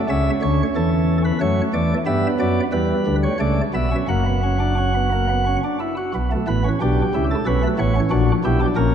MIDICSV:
0, 0, Header, 1, 2, 480
1, 0, Start_track
1, 0, Key_signature, 2, "minor"
1, 0, Tempo, 655738
1, 72, Time_signature, 3, 2, 24, 8
1, 1993, Tempo, 684151
1, 4393, Tempo, 660066
1, 6432, End_track
2, 0, Start_track
2, 0, Title_t, "Pipe organ"
2, 0, Program_c, 0, 19
2, 65, Note_on_c, 0, 49, 74
2, 66, Note_on_c, 0, 61, 78
2, 69, Note_on_c, 0, 37, 77
2, 70, Note_on_c, 0, 76, 97
2, 217, Note_off_c, 0, 49, 0
2, 219, Note_off_c, 0, 37, 0
2, 219, Note_off_c, 0, 76, 0
2, 307, Note_on_c, 0, 50, 71
2, 309, Note_on_c, 0, 38, 73
2, 311, Note_on_c, 0, 73, 86
2, 458, Note_off_c, 0, 50, 0
2, 459, Note_off_c, 0, 38, 0
2, 460, Note_off_c, 0, 73, 0
2, 553, Note_on_c, 0, 69, 79
2, 556, Note_on_c, 0, 52, 76
2, 557, Note_on_c, 0, 40, 76
2, 861, Note_off_c, 0, 69, 0
2, 892, Note_off_c, 0, 61, 0
2, 913, Note_on_c, 0, 71, 72
2, 966, Note_off_c, 0, 40, 0
2, 966, Note_off_c, 0, 52, 0
2, 1015, Note_off_c, 0, 71, 0
2, 1031, Note_on_c, 0, 57, 77
2, 1032, Note_on_c, 0, 54, 81
2, 1033, Note_on_c, 0, 42, 85
2, 1033, Note_on_c, 0, 73, 82
2, 1181, Note_off_c, 0, 42, 0
2, 1181, Note_off_c, 0, 54, 0
2, 1181, Note_off_c, 0, 73, 0
2, 1270, Note_on_c, 0, 74, 77
2, 1271, Note_on_c, 0, 40, 77
2, 1272, Note_on_c, 0, 52, 70
2, 1419, Note_off_c, 0, 74, 0
2, 1420, Note_off_c, 0, 40, 0
2, 1421, Note_off_c, 0, 52, 0
2, 1444, Note_off_c, 0, 57, 0
2, 1508, Note_on_c, 0, 76, 91
2, 1509, Note_on_c, 0, 43, 83
2, 1510, Note_on_c, 0, 55, 80
2, 1510, Note_on_c, 0, 59, 73
2, 1658, Note_off_c, 0, 76, 0
2, 1659, Note_off_c, 0, 43, 0
2, 1660, Note_off_c, 0, 55, 0
2, 1752, Note_on_c, 0, 54, 76
2, 1754, Note_on_c, 0, 42, 72
2, 1754, Note_on_c, 0, 74, 86
2, 1902, Note_off_c, 0, 54, 0
2, 1903, Note_off_c, 0, 42, 0
2, 1903, Note_off_c, 0, 74, 0
2, 1926, Note_off_c, 0, 59, 0
2, 1993, Note_on_c, 0, 71, 73
2, 1995, Note_on_c, 0, 40, 62
2, 1995, Note_on_c, 0, 55, 69
2, 1997, Note_on_c, 0, 52, 70
2, 2140, Note_off_c, 0, 40, 0
2, 2141, Note_off_c, 0, 52, 0
2, 2233, Note_on_c, 0, 38, 67
2, 2234, Note_on_c, 0, 50, 60
2, 2297, Note_off_c, 0, 71, 0
2, 2351, Note_on_c, 0, 73, 71
2, 2379, Note_off_c, 0, 38, 0
2, 2379, Note_off_c, 0, 50, 0
2, 2400, Note_off_c, 0, 55, 0
2, 2451, Note_off_c, 0, 73, 0
2, 2464, Note_on_c, 0, 49, 69
2, 2465, Note_on_c, 0, 37, 75
2, 2466, Note_on_c, 0, 57, 68
2, 2468, Note_on_c, 0, 74, 79
2, 2613, Note_off_c, 0, 49, 0
2, 2614, Note_off_c, 0, 37, 0
2, 2614, Note_off_c, 0, 57, 0
2, 2616, Note_off_c, 0, 74, 0
2, 2705, Note_on_c, 0, 47, 60
2, 2706, Note_on_c, 0, 59, 56
2, 2707, Note_on_c, 0, 35, 61
2, 2708, Note_on_c, 0, 76, 64
2, 2809, Note_off_c, 0, 59, 0
2, 2829, Note_on_c, 0, 61, 62
2, 2854, Note_off_c, 0, 47, 0
2, 2856, Note_off_c, 0, 35, 0
2, 2856, Note_off_c, 0, 76, 0
2, 2931, Note_off_c, 0, 61, 0
2, 2948, Note_on_c, 0, 30, 64
2, 2948, Note_on_c, 0, 58, 60
2, 2948, Note_on_c, 0, 78, 72
2, 2951, Note_on_c, 0, 42, 65
2, 3051, Note_off_c, 0, 58, 0
2, 3070, Note_on_c, 0, 59, 55
2, 3173, Note_off_c, 0, 59, 0
2, 3193, Note_on_c, 0, 61, 58
2, 3295, Note_off_c, 0, 61, 0
2, 3307, Note_on_c, 0, 62, 59
2, 3413, Note_off_c, 0, 62, 0
2, 3433, Note_on_c, 0, 61, 66
2, 3537, Note_off_c, 0, 61, 0
2, 3552, Note_on_c, 0, 59, 71
2, 3656, Note_off_c, 0, 59, 0
2, 3676, Note_on_c, 0, 58, 60
2, 3779, Note_off_c, 0, 58, 0
2, 3795, Note_on_c, 0, 59, 60
2, 3897, Note_off_c, 0, 59, 0
2, 3917, Note_on_c, 0, 61, 63
2, 3986, Note_off_c, 0, 30, 0
2, 3986, Note_off_c, 0, 78, 0
2, 3988, Note_off_c, 0, 42, 0
2, 4018, Note_off_c, 0, 61, 0
2, 4039, Note_on_c, 0, 62, 59
2, 4140, Note_off_c, 0, 62, 0
2, 4151, Note_on_c, 0, 64, 61
2, 4255, Note_off_c, 0, 64, 0
2, 4273, Note_on_c, 0, 66, 63
2, 4376, Note_off_c, 0, 66, 0
2, 4394, Note_on_c, 0, 47, 82
2, 4395, Note_on_c, 0, 35, 77
2, 4395, Note_on_c, 0, 59, 71
2, 4500, Note_off_c, 0, 59, 0
2, 4518, Note_on_c, 0, 57, 63
2, 4545, Note_off_c, 0, 47, 0
2, 4546, Note_off_c, 0, 35, 0
2, 4622, Note_off_c, 0, 57, 0
2, 4634, Note_on_c, 0, 71, 82
2, 4636, Note_on_c, 0, 45, 73
2, 4637, Note_on_c, 0, 33, 63
2, 4638, Note_on_c, 0, 59, 68
2, 4743, Note_off_c, 0, 59, 0
2, 4755, Note_on_c, 0, 61, 65
2, 4786, Note_off_c, 0, 71, 0
2, 4787, Note_off_c, 0, 45, 0
2, 4788, Note_off_c, 0, 33, 0
2, 4861, Note_off_c, 0, 61, 0
2, 4880, Note_on_c, 0, 62, 69
2, 4883, Note_on_c, 0, 35, 65
2, 4883, Note_on_c, 0, 67, 82
2, 4884, Note_on_c, 0, 47, 70
2, 5029, Note_off_c, 0, 62, 0
2, 5031, Note_off_c, 0, 35, 0
2, 5031, Note_off_c, 0, 47, 0
2, 5120, Note_on_c, 0, 49, 65
2, 5121, Note_on_c, 0, 37, 76
2, 5121, Note_on_c, 0, 64, 67
2, 5191, Note_off_c, 0, 67, 0
2, 5241, Note_on_c, 0, 69, 68
2, 5268, Note_off_c, 0, 49, 0
2, 5269, Note_off_c, 0, 37, 0
2, 5269, Note_off_c, 0, 64, 0
2, 5343, Note_off_c, 0, 69, 0
2, 5354, Note_on_c, 0, 47, 77
2, 5355, Note_on_c, 0, 35, 71
2, 5355, Note_on_c, 0, 61, 74
2, 5355, Note_on_c, 0, 71, 98
2, 5459, Note_off_c, 0, 61, 0
2, 5477, Note_on_c, 0, 57, 64
2, 5503, Note_off_c, 0, 47, 0
2, 5504, Note_off_c, 0, 35, 0
2, 5504, Note_off_c, 0, 71, 0
2, 5580, Note_off_c, 0, 57, 0
2, 5587, Note_on_c, 0, 45, 70
2, 5589, Note_on_c, 0, 59, 77
2, 5590, Note_on_c, 0, 33, 73
2, 5592, Note_on_c, 0, 73, 85
2, 5695, Note_off_c, 0, 59, 0
2, 5713, Note_on_c, 0, 61, 67
2, 5738, Note_off_c, 0, 45, 0
2, 5739, Note_off_c, 0, 33, 0
2, 5741, Note_off_c, 0, 73, 0
2, 5816, Note_off_c, 0, 61, 0
2, 5821, Note_on_c, 0, 46, 76
2, 5822, Note_on_c, 0, 62, 83
2, 5822, Note_on_c, 0, 66, 99
2, 5823, Note_on_c, 0, 34, 82
2, 5973, Note_off_c, 0, 46, 0
2, 5974, Note_off_c, 0, 34, 0
2, 5974, Note_off_c, 0, 62, 0
2, 5974, Note_off_c, 0, 66, 0
2, 6067, Note_on_c, 0, 35, 79
2, 6067, Note_on_c, 0, 47, 77
2, 6067, Note_on_c, 0, 64, 81
2, 6069, Note_on_c, 0, 67, 91
2, 6173, Note_off_c, 0, 64, 0
2, 6184, Note_on_c, 0, 62, 76
2, 6218, Note_off_c, 0, 35, 0
2, 6218, Note_off_c, 0, 47, 0
2, 6219, Note_off_c, 0, 67, 0
2, 6291, Note_off_c, 0, 62, 0
2, 6297, Note_on_c, 0, 34, 81
2, 6297, Note_on_c, 0, 70, 90
2, 6299, Note_on_c, 0, 46, 73
2, 6302, Note_on_c, 0, 61, 86
2, 6432, Note_off_c, 0, 34, 0
2, 6432, Note_off_c, 0, 46, 0
2, 6432, Note_off_c, 0, 61, 0
2, 6432, Note_off_c, 0, 70, 0
2, 6432, End_track
0, 0, End_of_file